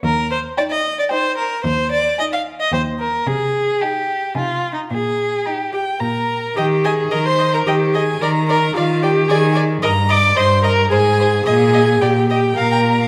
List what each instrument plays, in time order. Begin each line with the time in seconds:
0.04 cello D#2, violin A#4
0.31 violin C5
0.57 viola D#4, violin D5 G5
0.71 violin D#5
0.99 violin D5
1.09 viola D#4, violin C5 G5
1.37 violin A#4
1.64 cello D#2, violin C5
1.91 violin D5
2.18 viola D#4, violin D#5 G#5
2.33 violin F5
2.60 violin D#5
2.72 cello D#2, viola D#4, violin C5 G5
3.00 violin A#4
3.27 cello C3, violin G#4
3.81 viola D#4, violin G4 G#5
4.35 cello C3, viola D#4, violin F4 G#5
4.73 violin D#4
4.91 cello A#2, violin G#4
5.46 viola D#4, violin G4 A#5
5.73 viola G4, violin G5
6.00 cello A#2, viola A#4, violin A#5
6.56 cello D#3, viola G4, violin D#5 G5
6.84 viola G#4, violin D#5 G#5
7.11 cello D#3, viola A#4, violin D#5 A#5
7.26 viola C5, violin C6
7.39 violin D#5
7.53 viola A#4, violin A#5
7.66 cello D#3, viola G4, violin D#5 G5
7.94 viola G#4, violin D#5 G#5
8.21 cello D#3, viola A#4, violin D5 A#5
8.48 viola A#4, violin D5 A#5
8.75 cello D#3, viola F4, violin D5 F5
9.02 viola G4, violin D5 G5
9.29 cello D#3, viola G#4, violin D5 G#5
9.56 violin D5
9.82 cello G2, viola A#4, violin D#5 A#5
10.09 viola D5, violin D#5 D6
10.36 cello G2, viola C5, violin D#5 C6
10.63 viola A#4, violin D#5 A#5
10.91 cello G#2, viola G#4, violin C5 G#5
11.20 violin C5
11.45 cello A#2, viola G#4, violin D#5 G#5
11.74 violin D#5
12.01 cello A#2, viola G4, violin D5 G5
12.29 viola G4, violin D#5 G5
12.57 cello A#2, viola A#4, violin F5 A#5
12.72 violin G5
13.00 violin F5